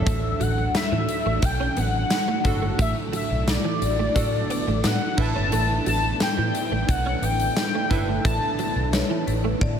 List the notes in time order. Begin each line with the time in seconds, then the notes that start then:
Already playing: A2 F#3 A3 D4 A4 E5
0.06 A1 A3, kick, closed hi-hat
0.40 A1 F#3 F#5, closed hi-hat
0.58 muted clean electric guitar stroke
0.74 E5, muted fingered electric bass stroke, snare, closed hi-hat, tambourine
0.92 A2 E3
1.09 muted clean electric guitar stroke, closed hi-hat
1.26 A1 A3
1.42 B1 G5, muted clean electric guitar stroke, kick, closed hi-hat
1.60 C#4
1.77 A1 B3 F#5, closed hi-hat
2.10 snare, closed hi-hat, tambourine
2.28 A3
2.44 G1 A2 D4 E4 F#4 A4, muted clean electric guitar stroke, kick, closed hi-hat
2.62 A3
2.79 A1 A3 E5, kick, closed hi-hat
3.13 F#3 E5, closed hi-hat
3.30 B1, muted clean electric guitar stroke
3.47 D5, snare, closed hi-hat, tambourine
3.65 E3
3.82 A1, muted clean electric guitar stroke, closed hi-hat
3.99 A3
4.15 A2 D4 F#4 A4, muted clean electric guitar stroke, kick, closed hi-hat
4.50 B3, closed hi-hat
4.67 A1 A3
4.84 A2 B3 F#5, snare, closed hi-hat, tambourine
5.02 muted clean electric guitar stroke
5.17 A1 A2 B3 D4 E4 A4 B4 E5 A5, kick, crash
5.35 G1 C#4
5.52 A1 A3, closed hi-hat
5.86 A1 F#3 A5, closed hi-hat
6.03 muted clean electric guitar stroke
6.20 G5, muted fingered electric bass stroke, snare, closed hi-hat, tambourine
6.38 A2 E3
6.54 muted clean electric guitar stroke, closed hi-hat
6.71 A1 A3
6.89 B1 F#5, muted clean electric guitar stroke, kick, closed hi-hat
7.06 C#4
7.22 A1 B3 G5, closed hi-hat
7.40 closed hi-hat
7.56 snare, closed hi-hat, tambourine
7.75 A3
7.90 G1 A2 B3 D4 E4 A4 B4 E5, kick, closed hi-hat
8.08 A3
8.25 A1 A3 A5, kick, closed hi-hat
8.59 F#3, closed hi-hat
8.76 B1, muted clean electric guitar stroke
8.93 C#5, snare, closed hi-hat, tambourine
9.10 E3
9.27 A1 B4, muted clean electric guitar stroke, closed hi-hat
9.44 A3
9.61 A2 D5, muted clean electric guitar stroke, kick, high tom